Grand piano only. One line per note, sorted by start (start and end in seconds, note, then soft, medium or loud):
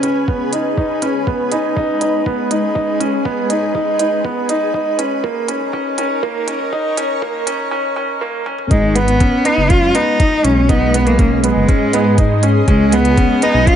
0.03 0.25 C#4 medium
0.28 0.50 B3 medium
0.53 0.75 D#4 medium
0.78 1.00 D#4 medium
1.02 1.24 C#4 medium
1.27 1.49 B3 medium
1.52 1.74 D#4 medium
1.76 1.99 D#4 medium
2.01 2.24 D#4 medium
2.26 2.48 B3 medium
2.51 2.73 D#4 medium
2.75 2.98 D#4 medium
3.00 3.23 C#4 medium
3.25 3.47 B3 medium
3.50 3.72 D#4 medium
3.75 3.97 D#4 medium
4.00 4.22 D#4 medium
4.25 4.47 B3 medium
4.49 4.72 D#4 medium
4.74 4.96 D#4 medium
4.99 5.21 C#4 medium
5.24 5.46 A#3 medium
5.48 5.71 C#4 medium
5.73 5.96 C#4 medium
5.98 6.20 C#4 medium
6.23 6.45 A#3 medium
6.48 6.70 C#4 medium
6.73 6.95 D#4 loud
6.97 7.20 C#4 medium
7.22 7.44 A#3 medium
7.47 7.69 C#4 medium
7.71 7.94 C#4 medium
7.96 8.19 C#4 medium
8.21 8.44 A#3 medium
8.46 8.68 C#4 medium
8.71 8.93 D#4 medium
8.96 9.18 B3 medium
9.20 9.43 C#4 medium
9.45 9.68 B3 medium
9.70 9.92 C#4 medium
9.95 10.17 B3 medium
10.20 10.42 D#4 medium
10.44 10.67 C#4 medium
10.69 10.91 D#4 medium
10.94 11.16 B3 medium
11.19 11.41 C#4 medium
11.44 11.66 B3 medium
11.69 11.91 C#4 medium
11.94 12.16 B3 medium
12.18 12.40 D#4 medium
12.43 12.65 C#4 medium
12.68 12.90 C#4 medium
12.93 13.15 B3 medium
13.18 13.40 C#4 medium
13.43 13.65 B3 medium
13.67 13.76 C#4 medium